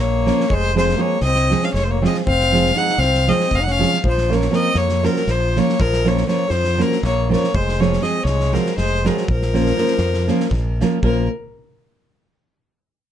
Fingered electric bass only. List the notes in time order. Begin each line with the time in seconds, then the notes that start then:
0.00 A#1
0.51 F1
1.22 C2
1.74 F1
2.28 F1
2.98 C2
3.52 F1
4.05 A#1
4.75 F2
5.27 A#1
5.81 A#1
6.50 F2
7.03 A#1
7.54 F1
8.25 C2
8.78 F1
9.29 A#1
9.99 F2
10.51 A#1
11.03 A#1